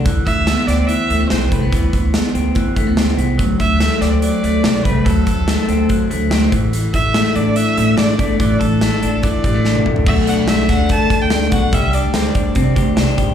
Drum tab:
CC |----------------|----------------|----------------|----------------|
HH |x-x-x-x-x-x-x-x-|x-x-x-x-x-x-x-x-|x-x-x-x-x-x-x-x-|x-x-x-x-x-x-x-x-|
SD |----o-o-----o---|----o-------o---|----o-o-----o---|----o-------o---|
T1 |----------------|----------------|----------------|----------------|
T2 |----------------|----------------|----------------|----------------|
FT |----------------|----------------|----------------|----------------|
BD |o-o-----------o-|o-o-----o-o-----|o-o-----------o-|o-o-----o-----o-|

CC |----------------|----------------|x---------------|----------------|
HH |x-x-x-x-x-x-x-x-|x-x-x-x-x-x-----|--x-x-x-x-x-x-x-|x-x-x-x-x-x-x-x-|
SD |----o-------o---|----o-------o---|----o-o-----o---|----o-------o---|
T1 |----------------|-------------o--|----------------|----------------|
T2 |----------------|--------------o-|----------------|----------------|
FT |----------------|---------------o|----------------|----------------|
BD |--o-----------o-|o-o-----o-o-----|o-----o-o-o---o-|o-----o-o-o---o-|